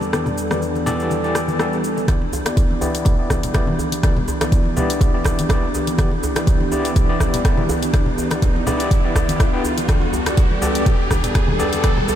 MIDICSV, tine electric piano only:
0, 0, Header, 1, 2, 480
1, 0, Start_track
1, 0, Key_signature, 1, "minor"
1, 0, Tempo, 487805
1, 130, Time_signature, 4, 2, 24, 8
1, 11959, End_track
2, 0, Start_track
2, 0, Title_t, "Tine electric piano"
2, 0, Program_c, 0, 4
2, 129, Note_on_c, 0, 52, 80
2, 129, Note_on_c, 0, 59, 75
2, 129, Note_on_c, 0, 67, 73
2, 129, Note_on_c, 0, 69, 75
2, 129, Note_on_c, 0, 74, 87
2, 244, Note_off_c, 0, 59, 0
2, 244, Note_off_c, 0, 67, 0
2, 244, Note_off_c, 0, 69, 0
2, 245, Note_off_c, 0, 52, 0
2, 245, Note_off_c, 0, 74, 0
2, 499, Note_on_c, 0, 59, 64
2, 499, Note_on_c, 0, 69, 66
2, 499, Note_on_c, 0, 74, 74
2, 500, Note_on_c, 0, 52, 68
2, 500, Note_on_c, 0, 67, 66
2, 823, Note_off_c, 0, 52, 0
2, 823, Note_off_c, 0, 59, 0
2, 823, Note_off_c, 0, 67, 0
2, 823, Note_off_c, 0, 69, 0
2, 823, Note_off_c, 0, 74, 0
2, 848, Note_on_c, 0, 69, 85
2, 849, Note_on_c, 0, 52, 96
2, 849, Note_on_c, 0, 59, 85
2, 849, Note_on_c, 0, 67, 87
2, 849, Note_on_c, 0, 74, 107
2, 1188, Note_off_c, 0, 52, 0
2, 1188, Note_off_c, 0, 59, 0
2, 1188, Note_off_c, 0, 69, 0
2, 1189, Note_off_c, 0, 67, 0
2, 1189, Note_off_c, 0, 74, 0
2, 1220, Note_on_c, 0, 52, 83
2, 1220, Note_on_c, 0, 59, 76
2, 1220, Note_on_c, 0, 67, 75
2, 1220, Note_on_c, 0, 69, 75
2, 1220, Note_on_c, 0, 74, 94
2, 1543, Note_off_c, 0, 52, 0
2, 1543, Note_off_c, 0, 59, 0
2, 1543, Note_off_c, 0, 67, 0
2, 1543, Note_off_c, 0, 69, 0
2, 1543, Note_off_c, 0, 74, 0
2, 1568, Note_on_c, 0, 67, 75
2, 1568, Note_on_c, 0, 74, 88
2, 1569, Note_on_c, 0, 52, 86
2, 1569, Note_on_c, 0, 59, 75
2, 1569, Note_on_c, 0, 69, 76
2, 1744, Note_off_c, 0, 67, 0
2, 1744, Note_off_c, 0, 74, 0
2, 1745, Note_off_c, 0, 52, 0
2, 1745, Note_off_c, 0, 59, 0
2, 1745, Note_off_c, 0, 69, 0
2, 2048, Note_on_c, 0, 59, 77
2, 2049, Note_on_c, 0, 64, 73
2, 2049, Note_on_c, 0, 67, 71
2, 2049, Note_on_c, 0, 74, 90
2, 2164, Note_off_c, 0, 59, 0
2, 2164, Note_off_c, 0, 64, 0
2, 2164, Note_off_c, 0, 67, 0
2, 2164, Note_off_c, 0, 74, 0
2, 2419, Note_on_c, 0, 59, 69
2, 2419, Note_on_c, 0, 64, 63
2, 2420, Note_on_c, 0, 67, 66
2, 2420, Note_on_c, 0, 74, 77
2, 2743, Note_off_c, 0, 59, 0
2, 2743, Note_off_c, 0, 64, 0
2, 2743, Note_off_c, 0, 67, 0
2, 2743, Note_off_c, 0, 74, 0
2, 2767, Note_on_c, 0, 64, 84
2, 2767, Note_on_c, 0, 67, 85
2, 2767, Note_on_c, 0, 74, 101
2, 2768, Note_on_c, 0, 59, 98
2, 3108, Note_off_c, 0, 59, 0
2, 3108, Note_off_c, 0, 64, 0
2, 3108, Note_off_c, 0, 67, 0
2, 3108, Note_off_c, 0, 74, 0
2, 3139, Note_on_c, 0, 59, 86
2, 3139, Note_on_c, 0, 64, 74
2, 3140, Note_on_c, 0, 67, 75
2, 3140, Note_on_c, 0, 74, 93
2, 3463, Note_off_c, 0, 59, 0
2, 3463, Note_off_c, 0, 64, 0
2, 3463, Note_off_c, 0, 67, 0
2, 3463, Note_off_c, 0, 74, 0
2, 3488, Note_on_c, 0, 59, 83
2, 3488, Note_on_c, 0, 67, 78
2, 3488, Note_on_c, 0, 74, 92
2, 3489, Note_on_c, 0, 64, 76
2, 3664, Note_off_c, 0, 59, 0
2, 3664, Note_off_c, 0, 67, 0
2, 3664, Note_off_c, 0, 74, 0
2, 3665, Note_off_c, 0, 64, 0
2, 3968, Note_on_c, 0, 59, 81
2, 3969, Note_on_c, 0, 64, 76
2, 3969, Note_on_c, 0, 67, 72
2, 3969, Note_on_c, 0, 74, 90
2, 4084, Note_off_c, 0, 59, 0
2, 4084, Note_off_c, 0, 64, 0
2, 4084, Note_off_c, 0, 67, 0
2, 4084, Note_off_c, 0, 74, 0
2, 4339, Note_on_c, 0, 59, 72
2, 4339, Note_on_c, 0, 64, 65
2, 4339, Note_on_c, 0, 67, 64
2, 4339, Note_on_c, 0, 74, 80
2, 4663, Note_off_c, 0, 59, 0
2, 4663, Note_off_c, 0, 64, 0
2, 4663, Note_off_c, 0, 67, 0
2, 4663, Note_off_c, 0, 74, 0
2, 4688, Note_on_c, 0, 67, 88
2, 4689, Note_on_c, 0, 59, 95
2, 4689, Note_on_c, 0, 64, 86
2, 4689, Note_on_c, 0, 74, 107
2, 5028, Note_off_c, 0, 59, 0
2, 5028, Note_off_c, 0, 64, 0
2, 5028, Note_off_c, 0, 67, 0
2, 5028, Note_off_c, 0, 74, 0
2, 5059, Note_on_c, 0, 59, 84
2, 5059, Note_on_c, 0, 64, 78
2, 5059, Note_on_c, 0, 67, 77
2, 5059, Note_on_c, 0, 74, 93
2, 5382, Note_off_c, 0, 74, 0
2, 5383, Note_off_c, 0, 59, 0
2, 5383, Note_off_c, 0, 64, 0
2, 5383, Note_off_c, 0, 67, 0
2, 5408, Note_on_c, 0, 59, 82
2, 5408, Note_on_c, 0, 64, 76
2, 5408, Note_on_c, 0, 67, 77
2, 5408, Note_on_c, 0, 74, 96
2, 5584, Note_off_c, 0, 59, 0
2, 5584, Note_off_c, 0, 64, 0
2, 5584, Note_off_c, 0, 67, 0
2, 5584, Note_off_c, 0, 74, 0
2, 5888, Note_on_c, 0, 59, 82
2, 5888, Note_on_c, 0, 64, 72
2, 5888, Note_on_c, 0, 67, 77
2, 5889, Note_on_c, 0, 74, 89
2, 6004, Note_off_c, 0, 59, 0
2, 6004, Note_off_c, 0, 64, 0
2, 6004, Note_off_c, 0, 67, 0
2, 6004, Note_off_c, 0, 74, 0
2, 6259, Note_on_c, 0, 59, 72
2, 6259, Note_on_c, 0, 64, 67
2, 6259, Note_on_c, 0, 67, 64
2, 6259, Note_on_c, 0, 74, 77
2, 6583, Note_off_c, 0, 59, 0
2, 6583, Note_off_c, 0, 64, 0
2, 6583, Note_off_c, 0, 67, 0
2, 6583, Note_off_c, 0, 74, 0
2, 6609, Note_on_c, 0, 59, 95
2, 6609, Note_on_c, 0, 64, 90
2, 6609, Note_on_c, 0, 67, 91
2, 6609, Note_on_c, 0, 74, 107
2, 6948, Note_off_c, 0, 59, 0
2, 6949, Note_off_c, 0, 64, 0
2, 6949, Note_off_c, 0, 67, 0
2, 6949, Note_off_c, 0, 74, 0
2, 6979, Note_on_c, 0, 59, 88
2, 6979, Note_on_c, 0, 64, 77
2, 6979, Note_on_c, 0, 67, 77
2, 6980, Note_on_c, 0, 74, 96
2, 7303, Note_off_c, 0, 59, 0
2, 7303, Note_off_c, 0, 64, 0
2, 7303, Note_off_c, 0, 67, 0
2, 7303, Note_off_c, 0, 74, 0
2, 7329, Note_on_c, 0, 59, 83
2, 7329, Note_on_c, 0, 64, 81
2, 7329, Note_on_c, 0, 67, 80
2, 7329, Note_on_c, 0, 74, 94
2, 7505, Note_off_c, 0, 59, 0
2, 7505, Note_off_c, 0, 64, 0
2, 7505, Note_off_c, 0, 67, 0
2, 7505, Note_off_c, 0, 74, 0
2, 7809, Note_on_c, 0, 59, 83
2, 7809, Note_on_c, 0, 64, 75
2, 7809, Note_on_c, 0, 67, 73
2, 7809, Note_on_c, 0, 74, 86
2, 7924, Note_off_c, 0, 59, 0
2, 7924, Note_off_c, 0, 64, 0
2, 7924, Note_off_c, 0, 67, 0
2, 7924, Note_off_c, 0, 74, 0
2, 8179, Note_on_c, 0, 59, 71
2, 8179, Note_on_c, 0, 67, 66
2, 8179, Note_on_c, 0, 74, 80
2, 8180, Note_on_c, 0, 64, 65
2, 8503, Note_off_c, 0, 59, 0
2, 8503, Note_off_c, 0, 64, 0
2, 8503, Note_off_c, 0, 67, 0
2, 8503, Note_off_c, 0, 74, 0
2, 8527, Note_on_c, 0, 64, 93
2, 8527, Note_on_c, 0, 67, 89
2, 8528, Note_on_c, 0, 59, 95
2, 8528, Note_on_c, 0, 74, 109
2, 8868, Note_off_c, 0, 59, 0
2, 8868, Note_off_c, 0, 64, 0
2, 8868, Note_off_c, 0, 67, 0
2, 8868, Note_off_c, 0, 74, 0
2, 8900, Note_on_c, 0, 59, 82
2, 8900, Note_on_c, 0, 64, 78
2, 8900, Note_on_c, 0, 67, 80
2, 8900, Note_on_c, 0, 74, 94
2, 8987, Note_off_c, 0, 59, 0
2, 8987, Note_off_c, 0, 64, 0
2, 8987, Note_off_c, 0, 67, 0
2, 8987, Note_off_c, 0, 74, 0
2, 9009, Note_on_c, 0, 59, 77
2, 9009, Note_on_c, 0, 64, 70
2, 9009, Note_on_c, 0, 67, 68
2, 9009, Note_on_c, 0, 74, 82
2, 9348, Note_off_c, 0, 67, 0
2, 9348, Note_off_c, 0, 74, 0
2, 9349, Note_off_c, 0, 59, 0
2, 9349, Note_off_c, 0, 64, 0
2, 9380, Note_on_c, 0, 59, 95
2, 9380, Note_on_c, 0, 64, 84
2, 9380, Note_on_c, 0, 67, 84
2, 9380, Note_on_c, 0, 79, 100
2, 9476, Note_off_c, 0, 59, 0
2, 9476, Note_off_c, 0, 64, 0
2, 9476, Note_off_c, 0, 67, 0
2, 9476, Note_off_c, 0, 79, 0
2, 9730, Note_on_c, 0, 59, 76
2, 9730, Note_on_c, 0, 67, 70
2, 9730, Note_on_c, 0, 69, 67
2, 9730, Note_on_c, 0, 74, 84
2, 9845, Note_off_c, 0, 59, 0
2, 9845, Note_off_c, 0, 67, 0
2, 9845, Note_off_c, 0, 69, 0
2, 9845, Note_off_c, 0, 74, 0
2, 10099, Note_on_c, 0, 69, 59
2, 10100, Note_on_c, 0, 59, 65
2, 10100, Note_on_c, 0, 67, 61
2, 10100, Note_on_c, 0, 74, 75
2, 10423, Note_off_c, 0, 59, 0
2, 10423, Note_off_c, 0, 67, 0
2, 10423, Note_off_c, 0, 69, 0
2, 10423, Note_off_c, 0, 74, 0
2, 10449, Note_on_c, 0, 59, 89
2, 10449, Note_on_c, 0, 67, 85
2, 10449, Note_on_c, 0, 69, 81
2, 10449, Note_on_c, 0, 74, 99
2, 10672, Note_off_c, 0, 59, 0
2, 10672, Note_off_c, 0, 67, 0
2, 10672, Note_off_c, 0, 69, 0
2, 10672, Note_off_c, 0, 74, 0
2, 10689, Note_on_c, 0, 69, 67
2, 10804, Note_off_c, 0, 69, 0
2, 11060, Note_on_c, 0, 59, 68
2, 11060, Note_on_c, 0, 67, 65
2, 11060, Note_on_c, 0, 69, 65
2, 11060, Note_on_c, 0, 74, 75
2, 11383, Note_off_c, 0, 59, 0
2, 11383, Note_off_c, 0, 67, 0
2, 11383, Note_off_c, 0, 69, 0
2, 11383, Note_off_c, 0, 74, 0
2, 11408, Note_on_c, 0, 67, 88
2, 11408, Note_on_c, 0, 69, 84
2, 11408, Note_on_c, 0, 74, 105
2, 11409, Note_on_c, 0, 59, 93
2, 11631, Note_off_c, 0, 59, 0
2, 11631, Note_off_c, 0, 67, 0
2, 11631, Note_off_c, 0, 69, 0
2, 11631, Note_off_c, 0, 74, 0
2, 11648, Note_on_c, 0, 59, 79
2, 11648, Note_on_c, 0, 67, 69
2, 11648, Note_on_c, 0, 69, 73
2, 11648, Note_on_c, 0, 74, 89
2, 11764, Note_off_c, 0, 59, 0
2, 11764, Note_off_c, 0, 67, 0
2, 11764, Note_off_c, 0, 69, 0
2, 11764, Note_off_c, 0, 74, 0
2, 11959, End_track
0, 0, End_of_file